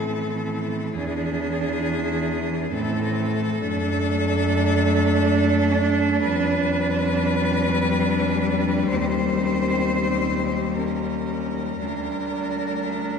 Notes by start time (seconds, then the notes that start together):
Already playing: A2 E3 C4 A4
0.97 E2 D4 G#4
2.74 A2 C4 A4
3.61 F#2 A3 D4
6.24 F2 G3 B4
8.90 D#2 C4 C5
10.77 C#4 A#4
11.81 D2 G3 D4